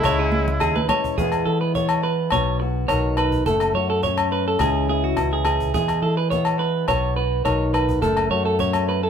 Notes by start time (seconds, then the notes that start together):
Already playing: G#3 E4
0.03 C#2 C#3 G#3 C#5, cajon bass, cajon slap, low agogo
0.19 G#4
0.32 C#4, cajon slap, high conga
0.48 low conga
0.60 D#2 G#4, cajon bass, cajon slap, low agogo
0.76 B4, high conga
0.89 E3 G#3 C#5, cajon slap, high conga, low conga, low agogo
1.04 cajon bass
1.18 E2 E3 G#3 B3 G#4, cajon bass
1.32 cajon slap, low agogo
1.46 E3 G#4 A4
1.61 B4
1.75 E3 B3 C#5, cajon bass
1.89 cajon slap, low agogo
2.03 B4, cajon slap
2.30 B1 B2 B3 C#5, cajon bass, cajon slap, low agogo
2.60 F#4, muted clean electric guitar stroke, cajon slap
2.88 B1 D#3 D#4 C#5, cajon bass, cajon slap, low agogo
3.17 B4, cajon slap, low agogo
3.32 cajon bass
3.46 F#1 F#2 A3 A4, cajon bass
3.60 cajon slap, low agogo
3.74 F#2 F#4 C#5
3.90 A4
4.03 F#3 C#4 C#5, cajon bass
4.17 cajon slap, low agogo
4.32 B4
4.48 A4
4.59 C#2 C#3 E3 G#3 C#4 E4 G#4, cajon bass, cajon slap, low agogo
4.88 E4 G#4, cajon slap
5.04 F#4
5.17 C#2 E3 C#4, cajon bass, cajon slap, low agogo
5.33 G#4
5.45 G#4, cajon slap, low agogo
5.60 cajon bass
5.74 E2 G#3 G#4, cajon bass
5.88 cajon slap, low agogo
6.02 E3 G#4 A4, cajon slap
6.17 B4
6.30 E3 B3 C#5, cajon bass
6.45 cajon slap, low agogo
6.59 B4, cajon slap
6.88 B1 B2 B3 C#5, cajon bass, cajon slap, low agogo
7.16 F#4 B4, cajon slap
7.44 B1 D#3 D#4 C#5, cajon bass, cajon slap, low agogo
7.74 B4, cajon slap, low agogo
7.89 cajon bass
8.01 F#1 F#2 A3 A4, cajon bass
8.17 cajon slap, low agogo
8.30 F#2 F#4 C#5, cajon slap
8.45 A4
8.58 F#3 C#4 C#5, cajon bass
8.73 cajon slap, low agogo
8.88 B4, cajon slap
9.03 A4